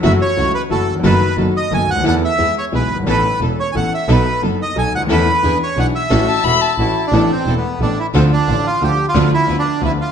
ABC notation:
X:1
M:3/4
L:1/16
Q:1/4=178
K:A
V:1 name="Violin"
z12 | z12 | z12 | z12 |
z12 | z12 | z2 a2 b2 a6 | [K:Am] z12 |
z12 | z12 |]
V:2 name="Bandoneon"
e2 c4 B2 A3 z | B4 z2 ^d2 g2 f2 | f2 e4 c2 B3 z | B4 z2 c3/2 g/2 f2 e2 |
B4 z2 ^d2 g2 f2 | B6 c2 f2 e2- | e8 E3 D- | [K:Am] D2 C3 B,3 D2 E2 |
C2 D4 F2 G3 F- | F2 E3 D3 E2 F2 |]
V:3 name="String section"
[A,EF]2 z2 [A,EF]2 z2 [A,EF]2 z2 | [B,^DA]2 z2 [B,DA]2 z2 [B,DA]2 z2 | [B,EA]2 z2 [B,EG]2 z2 [B,EG]2 z2 | [B,CA]2 z2 [B,CA]2 z2 [B,CA]2 z2 |
[B,^DA]2 z2 [B,DA]2 z2 [B,DA]2 z2 | [CEA]2 z2 [DEG]2 z2 [DEG]2 z2 | [CFA]2 z2 [CFA]2 z2 [CFA]2 z2 | [K:Am] [B,EA]2 z2 [B,EA]2 z2 [B,EA]2 z2 |
[DFA]2 z2 [DFA]2 z2 [DFA]2 z2 | [DFB]2 z2 [DFB]2 z2 [DFB]2 z2 |]
V:4 name="Grand piano" clef=bass
[F,,E,F,A,CF]2 z2 [C,,C,E,A,CF]2 z2 [F,,E,F,A,CF]2 z/2 ^D,,/2 E,,/2 =F,,/2 | [F,,^D,F,A,B,F]2 z2 [F,,D,F,A,B,F]2 z2 [F,,D,F,A,B,F]2 z/2 C,,/2 =D,,/2 ^D,,/2 | [E,,E,A,B,A]2 z2 [E,,E,G,B,G]2 z2 [B,,,B,,E,G,B,G]2 z/2 F,,,/2 =G,,,/2 ^G,,,/2 | [A,,,A,,E,B,CA]2 z2 [E,,,E,,E,B,CA]2 z2 [A,,,A,,E,B,CA]2 z2 |
[B,,,B,,F,B,^DA]2 z2 [F,,,F,,F,B,DA]2 z2 [B,,,B,,F,B,DA]2 z/2 C,,/2 =D,,/2 ^D,,/2 | [E,,E,A,CA]2 z2 [E,,E,B,DG]2 z2 [B,,,B,,E,B,DG]2 z2 | [A,,,A,,E,A,CF]2 z2 [E,,,E,,E,A,CF]2 z2 [A,,,A,,E,A,CF]2 z2 | [K:Am] [A,,,A,,E,A,B,A]2 z2 [E,,,E,,E,A,B,A]2 z2 [A,,,A,,E,A,B,A]2 z2 |
[D,,D,F,A,F]2 z2 [A,,,A,,D,F,A,F]2 z2 [D,,D,F,A,F]2 z2 | [D,,D,F,B,F]2 z2 [D,,D,F,B,F]2 z2 [D,,D,F,B,F]2 z2 |]
V:5 name="Double bass" clef=bass
F,,,2 z2 C,,2 z2 F,,,2 z2 | F,,,2 z2 F,,,2 z2 F,,,2 D,,2 | E,,2 z2 E,,2 z2 B,,,2 =G,,,2 | A,,,2 z2 E,,,2 z2 A,,,2 z2 |
B,,,2 z2 F,,,2 z2 B,,,2 D,,2 | E,,2 z2 E,,2 z2 B,,,2 z2 | A,,,2 z2 E,,,2 z2 A,,,2 z2 | [K:Am] A,,,2 z2 E,,,2 z2 A,,,2 z2 |
D,,2 z2 A,,,2 z2 D,,2 z2 | D,,2 z2 D,,2 z2 D,,2 z2 |]